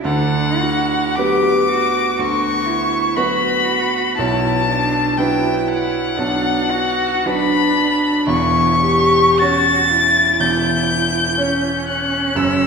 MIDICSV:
0, 0, Header, 1, 4, 480
1, 0, Start_track
1, 0, Key_signature, 2, "minor"
1, 0, Tempo, 1117318
1, 15, Time_signature, 4, 2, 24, 8
1, 497, Tempo, 1025641
1, 977, Tempo, 998336
1, 2897, Tempo, 1086957
1, 3377, Tempo, 1010101
1, 3857, Tempo, 1123596
1, 4337, Tempo, 986842
1, 5929, End_track
2, 0, Start_track
2, 0, Title_t, "Violin"
2, 0, Program_c, 0, 40
2, 19, Note_on_c, 0, 78, 105
2, 497, Note_on_c, 0, 86, 108
2, 504, Note_off_c, 0, 78, 0
2, 985, Note_on_c, 0, 85, 113
2, 993, Note_off_c, 0, 86, 0
2, 1453, Note_on_c, 0, 83, 111
2, 1460, Note_off_c, 0, 85, 0
2, 1931, Note_off_c, 0, 83, 0
2, 1934, Note_on_c, 0, 81, 112
2, 2417, Note_on_c, 0, 79, 99
2, 2424, Note_off_c, 0, 81, 0
2, 2658, Note_on_c, 0, 78, 106
2, 2666, Note_off_c, 0, 79, 0
2, 3380, Note_on_c, 0, 83, 117
2, 3387, Note_off_c, 0, 78, 0
2, 3857, Note_off_c, 0, 83, 0
2, 3859, Note_on_c, 0, 85, 117
2, 4335, Note_on_c, 0, 93, 127
2, 4342, Note_off_c, 0, 85, 0
2, 4827, Note_on_c, 0, 91, 107
2, 4835, Note_off_c, 0, 93, 0
2, 5541, Note_off_c, 0, 91, 0
2, 5544, Note_on_c, 0, 90, 92
2, 5781, Note_on_c, 0, 88, 105
2, 5788, Note_off_c, 0, 90, 0
2, 5929, Note_off_c, 0, 88, 0
2, 5929, End_track
3, 0, Start_track
3, 0, Title_t, "Cello"
3, 0, Program_c, 1, 42
3, 15, Note_on_c, 1, 62, 78
3, 257, Note_on_c, 1, 66, 80
3, 264, Note_off_c, 1, 62, 0
3, 497, Note_on_c, 1, 67, 80
3, 504, Note_off_c, 1, 66, 0
3, 743, Note_off_c, 1, 67, 0
3, 745, Note_on_c, 1, 66, 69
3, 966, Note_off_c, 1, 66, 0
3, 969, Note_on_c, 1, 66, 72
3, 1204, Note_on_c, 1, 64, 81
3, 1211, Note_off_c, 1, 66, 0
3, 1450, Note_on_c, 1, 66, 79
3, 1457, Note_off_c, 1, 64, 0
3, 1932, Note_off_c, 1, 66, 0
3, 1935, Note_on_c, 1, 64, 83
3, 2173, Note_off_c, 1, 64, 0
3, 2178, Note_on_c, 1, 62, 81
3, 2413, Note_off_c, 1, 62, 0
3, 2421, Note_on_c, 1, 64, 84
3, 2894, Note_on_c, 1, 62, 75
3, 2901, Note_off_c, 1, 64, 0
3, 3133, Note_on_c, 1, 66, 92
3, 3139, Note_off_c, 1, 62, 0
3, 3379, Note_on_c, 1, 62, 79
3, 3386, Note_off_c, 1, 66, 0
3, 3854, Note_on_c, 1, 64, 81
3, 3861, Note_off_c, 1, 62, 0
3, 4085, Note_off_c, 1, 64, 0
3, 4087, Note_on_c, 1, 67, 84
3, 4333, Note_on_c, 1, 66, 78
3, 4340, Note_off_c, 1, 67, 0
3, 4588, Note_on_c, 1, 64, 78
3, 4595, Note_off_c, 1, 66, 0
3, 5303, Note_on_c, 1, 61, 83
3, 5310, Note_off_c, 1, 64, 0
3, 5929, Note_off_c, 1, 61, 0
3, 5929, End_track
4, 0, Start_track
4, 0, Title_t, "Grand piano"
4, 0, Program_c, 2, 0
4, 0, Control_c, 2, 64, 127
4, 20, Note_on_c, 2, 38, 81
4, 21, Note_on_c, 2, 50, 76
4, 23, Control_c, 2, 64, 0
4, 107, Control_c, 2, 64, 127
4, 506, Note_on_c, 2, 54, 56
4, 509, Note_on_c, 2, 59, 58
4, 509, Note_on_c, 2, 71, 59
4, 960, Note_off_c, 2, 38, 0
4, 961, Note_off_c, 2, 50, 0
4, 962, Note_off_c, 2, 54, 0
4, 964, Note_off_c, 2, 59, 0
4, 964, Note_off_c, 2, 71, 0
4, 979, Note_on_c, 2, 38, 58
4, 980, Note_on_c, 2, 50, 68
4, 1451, Note_on_c, 2, 59, 58
4, 1453, Note_on_c, 2, 54, 57
4, 1455, Note_on_c, 2, 71, 64
4, 1913, Note_off_c, 2, 59, 0
4, 1914, Note_off_c, 2, 38, 0
4, 1914, Note_off_c, 2, 50, 0
4, 1914, Note_off_c, 2, 54, 0
4, 1916, Note_off_c, 2, 71, 0
4, 1939, Control_c, 2, 64, 0
4, 1940, Note_on_c, 2, 35, 83
4, 1943, Note_on_c, 2, 47, 75
4, 2011, Control_c, 2, 64, 127
4, 2418, Note_on_c, 2, 54, 57
4, 2422, Note_on_c, 2, 62, 60
4, 2426, Note_on_c, 2, 71, 61
4, 2878, Note_off_c, 2, 54, 0
4, 2880, Note_off_c, 2, 62, 0
4, 2882, Note_off_c, 2, 35, 0
4, 2882, Note_off_c, 2, 71, 0
4, 2883, Note_off_c, 2, 47, 0
4, 2900, Note_on_c, 2, 35, 64
4, 2900, Note_on_c, 2, 47, 60
4, 3376, Note_on_c, 2, 54, 62
4, 3376, Note_on_c, 2, 62, 60
4, 3377, Note_on_c, 2, 71, 62
4, 3837, Note_off_c, 2, 54, 0
4, 3837, Note_off_c, 2, 62, 0
4, 3838, Note_off_c, 2, 71, 0
4, 3839, Note_off_c, 2, 35, 0
4, 3839, Note_off_c, 2, 47, 0
4, 3855, Note_on_c, 2, 28, 75
4, 3858, Note_on_c, 2, 40, 78
4, 3864, Control_c, 2, 64, 0
4, 3945, Control_c, 2, 64, 127
4, 4344, Note_on_c, 2, 61, 60
4, 4347, Note_on_c, 2, 73, 64
4, 4806, Note_off_c, 2, 28, 0
4, 4807, Note_off_c, 2, 40, 0
4, 4810, Note_off_c, 2, 61, 0
4, 4811, Note_off_c, 2, 73, 0
4, 4825, Note_on_c, 2, 28, 62
4, 4825, Note_on_c, 2, 40, 59
4, 5299, Note_on_c, 2, 61, 58
4, 5302, Note_on_c, 2, 73, 64
4, 5756, Note_off_c, 2, 61, 0
4, 5757, Note_off_c, 2, 73, 0
4, 5758, Note_off_c, 2, 28, 0
4, 5758, Note_off_c, 2, 40, 0
4, 5776, Note_on_c, 2, 30, 70
4, 5778, Note_on_c, 2, 42, 76
4, 5786, Control_c, 2, 64, 0
4, 5853, Control_c, 2, 64, 127
4, 5929, Note_off_c, 2, 30, 0
4, 5929, Note_off_c, 2, 42, 0
4, 5929, End_track
0, 0, End_of_file